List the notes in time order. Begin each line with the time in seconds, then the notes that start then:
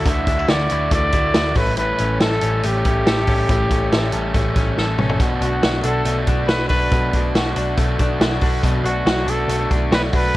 Already playing: A3 E4 F#4
0.05 D2 D3 E3 A3 E4 F#4 E5, kick, closed hi-hat
0.27 D2 D4 E4 F#4, kick, closed hi-hat
0.32 A3
0.39 E4
0.48 D2 E3 A3 E4 F#4 D5, snare, closed hi-hat
0.69 D2 E4 F#4, closed hi-hat
0.74 A3
0.91 D2 D3 E3 A3 E4 F#4 D5, kick, closed hi-hat
1.12 D2 E4 F#4, kick, closed hi-hat
1.17 A3
1.34 D2 E3 A3 E4 F#4, snare, closed hi-hat
1.55 A1 A2 G3 A3 C#4 A4 B4, kick, open hi-hat
1.77 A2 E3 G3 A3 C#4 A4 B4, closed hi-hat
1.98 A1 G3 A3 C#4 A4, closed hi-hat
2.20 A1 G3 A3 C#4 A4, snare, closed hi-hat
2.41 A1 G3 A3 C#4 A4, closed hi-hat
2.63 A1 A2 E3 G3 A3 C#4 G4 A4, closed hi-hat
2.85 A1 G3 A3 C#4 A4, kick, closed hi-hat
3.06 A1 G3 A3 C#4 A4, snare, closed hi-hat
3.27 A1 G3 A3 C#4 A4, kick, open hi-hat
3.49 A1 A2 E3 G3 A3 C#4 A4, kick, closed hi-hat
3.71 A1 A3 C#4 A4, kick, closed hi-hat
3.75 G3
3.92 A1 G3 A3 C#4 A4, snare, closed hi-hat
4.12 A1 A3 C#4 A4, closed hi-hat
4.17 G3
4.34 A1 A2 E3 G3 A3 C#4 A4, kick, closed hi-hat
4.56 A1 G3 A3 C#4 A4, kick, closed hi-hat
4.77 A1 G3 A3 C#4, snare
4.81 A4
4.98 A1 A3 C#4 A4, mid tom
5.03 G3
5.09 floor tom
5.20 B1 B2 F#3 A3 D4 F#4, kick, closed hi-hat
5.41 B1 D4 F#4, closed hi-hat
5.45 A3
5.62 B1 F#3 A3 D4 F#4, snare, closed hi-hat
5.83 B1 D4 F#4 A4, closed hi-hat
5.88 A3
6.05 B1 B2 F#3 A3 D4 F#4, closed hi-hat
6.27 B1 A3 D4 F#4, kick, closed hi-hat
6.47 B1 F#3 A3 D4 B4, snare, closed hi-hat
6.51 F#4
6.68 B1 D4 F#4 B4, kick, open hi-hat
6.73 A3
6.92 B1 B2 F#3 A3 D4 F#4, kick, closed hi-hat
7.13 B1 A3 D4 F#4, kick, closed hi-hat
7.35 B1 F#3 A3 D4 F#4, snare, closed hi-hat
7.56 B1 A3 D4 F#4, closed hi-hat
7.77 B1 B2 F#3 A3 D4 F#4, kick, closed hi-hat
7.99 B1 A3 D4 F#4, kick, closed hi-hat
8.20 B1 F#3 A3 D4 F#4, snare, closed hi-hat
8.41 B1 D4 F#4, kick, open hi-hat
8.45 A3
8.64 B1 B2 F#3 A3 D4 F#4, kick, closed hi-hat
8.84 B1 D4 F#4, closed hi-hat
8.89 A3
9.05 B1 F#3 A3 D4, snare, closed hi-hat
9.10 F#4
9.26 B1 D4 F#4 A4, closed hi-hat
9.31 A3
9.48 B1 B2 F#3 A3 D4 F#4, closed hi-hat
9.70 B1 A3 D4 F#4, kick, closed hi-hat
9.91 B1 F#3 A3 D4 F#4 B4, snare, closed hi-hat
10.12 B1 A3 D4 F#4 B4, kick, open hi-hat